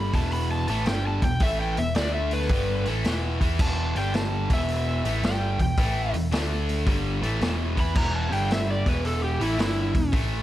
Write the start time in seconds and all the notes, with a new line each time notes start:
Already playing: G1 G2 D3 G3 B5
0.13 E1 E2 B2 E3 A5, kick, open hi-hat
0.32 B5, open hi-hat
0.51 A5
0.68 A1 A2 E3 A3 A5, open hi-hat
0.86 G1 G2 D3 G3 G5, snare, open hi-hat
1.07 A5
1.22 E1 E2 B2 G5, kick, open hi-hat
1.40 A1 A2 E3 A3 E5, kick, open hi-hat
1.61 G5
1.77 E1 E2 B2 E5, open hi-hat
1.95 D2 D3 A3 D4 D5, snare, open hi-hat
2.14 E5
2.31 B4, open hi-hat
2.41 snare
2.49 G1 G2 D3 G3, kick, open hi-hat
2.86 A1 A2 E3 A3, open hi-hat
3.04 E1 E2 B2 E3, snare, open hi-hat
3.41 E2 E3 B3 E4, kick, open hi-hat
3.59 E1 E2 B2 E3 A5, kick, crash
3.95 G1 G2 D3 G3 G5, open hi-hat
4.14 A5, snare, open hi-hat
4.50 E1 E2 B2 E3 E5, kick, open hi-hat
4.68 open hi-hat
5.05 A1 A2 E3 A3, open hi-hat
5.23 G1 G2 D3 G3 G5, snare, open hi-hat
5.59 E1 E2 B2 G5, kick, open hi-hat
5.77 A1 A2 E3 A3, kick, open hi-hat
6.14 E1 E2 B2, open hi-hat
6.32 D2 D3 A3 D4, snare, open hi-hat
6.69 open hi-hat
6.87 G1 G2 D3 G3, kick, open hi-hat
7.22 A1 A2 E3 A3, open hi-hat
7.41 E1 E2 B2 E3, snare, open hi-hat
7.77 E2 E3 B3 E4 B5, kick, open hi-hat
7.95 E1 E2 B2 E3 A#5, kick, crash
8.16 A5
8.31 G1 G2 D3 G3 G5, open hi-hat
8.51 E5, snare, open hi-hat
8.70 D5
8.86 E1 E2 B2 E3 B4, kick, open hi-hat
9.05 A4, open hi-hat
9.24 G4
9.40 A1 A2 E3 A3 E4, open hi-hat
9.58 G1 G2 D3 G3 E4, snare, open hi-hat
9.95 E1 E2 B2, kick, open hi-hat
10.12 A1 A2 E3 A3, kick, open hi-hat